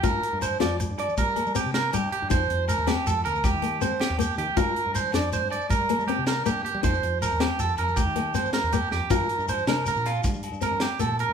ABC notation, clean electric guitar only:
X:1
M:12/8
L:1/8
Q:3/8=106
K:Gm
V:1 name="Clean electric guitar"
B2 c d z d B2 G B G G | c2 B G A B G2 c G G G | B2 c d c d B2 G B G G | c2 B G A B G2 c B G G |
B2 c B B F z2 B G A B |]